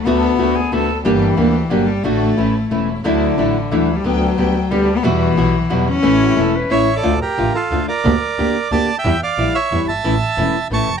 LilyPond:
<<
  \new Staff \with { instrumentName = "Bandoneon" } { \time 3/4 \key a \mixolydian \tempo 4 = 180 r2. | r2. | r2. | r2. |
r2. | r2. | r2 <cis'' e''>8. <a' d''>16~ | \key d \minor <a' d''>8 <g' bes'>4 <f' a'>4 <bes' d''>8~ |
<bes' d''>2 <d'' a''>8. <e'' g''>16~ | <e'' g''>8 <d'' f''>4 <cis'' e''>4 <e'' a''>8~ | <e'' a''>2 <a'' cis'''>8. r16 | }
  \new Staff \with { instrumentName = "Flute" } { \time 3/4 \key a \mixolydian r4 fis'8 gis'8 a'8. r16 | r2. | r2. | r2. |
r2. | r2. | r8 fis'16 g'16 a'8 b'8 cis''4 | \key d \minor r2. |
r2. | r2. | r2. | }
  \new Staff \with { instrumentName = "String section" } { \time 3/4 \key a \mixolydian <b d' a'>4 <b d' a'>4 <b d' a'>4 | <bes d' g'>4 <bes d' g'>4 <bes d' g'>4 | <a d' fis'>4 <a cis' e'>4 <a cis' e'>4 | <fis d' e'>4 <fis d' e'>4 <fis d' e'>4 |
<b d' g''>4 <b d' g''>4 <b d' g'>4 | <g e' fis'>4 <g e' fis'>4 <g e' fis'>4 | <a cis' e'>4 <a cis' e'>4 <a cis' e'>4 | \key d \minor r2. |
r2. | r2. | r2. | }
  \new Staff \with { instrumentName = "Nylon-string guitar" } { \time 3/4 \key a \mixolydian <d a b fis'>4 <d a b fis'>8 r8 <d a b fis'>8 r8 | <d g bes d' g'>4 <d g bes d' g'>8 r8 <d g bes d' g'>8 r8 | <d a d' fis'>4 <e a cis' e'>8 r8 <e a cis' e'>8 r8 | <d fis a d' e'>4 <d fis a d' e'>8 r8 <d fis a d' e'>8 r8 |
<d b>4 <d g b g'>8 r8 <d g b g'>8 r8 | <b, e g b fis'>4 <b, e g b fis'>8 r8 <b, e g b fis'>8 r8 | <e a cis' e'>4 <e a cis' e'>8 r8 <e a cis' e'>8 r8 | \key d \minor <d a d' f'>16 r8. <d a d' f'>8 r8 <d a d' f'>8 r8 |
<d bes d' g'>16 r8. <d bes d' g'>8 r8 <d bes d' g'>8 r8 | <e g e'>16 r8. <e g e'>8 r8 <e g e'>8 r8 | <e a cis' e'>16 r8. <e a cis' e'>8 r8 <e a cis' e'>8 r8 | }
  \new Staff \with { instrumentName = "Cello" } { \clef bass \time 3/4 \key a \mixolydian b2~ b8 r8 | e2 fis8 g8 | a2~ a8 r8 | d2 e8. g16 |
fis2 g8. b16 | e2 fis8 cis'8~ | cis'2 r4 | \key d \minor r2. |
r2. | r2. | r2. | }
  \new Staff \with { instrumentName = "Double bass" } { \clef bass \time 3/4 \key a \mixolydian d,4 d,4 d,4 | g,,4 d,4 g,,4 | a,,4 a,,4 e,,4 | d,4 a,,4 d,4 |
d,4 d,4 d,4 | e,4 b,,4 e,4 | a,,4 e,,4 a,,4 | \key d \minor d,8 r8 a,,8 r8 d,8 r8 |
d,8 r8 d,8 r8 d,8 r8 | e,8 r8 bes,,8 r8 e,8 g,,8 | a,,8 r8 e,,8 r8 a,,8 f,,8 | }
>>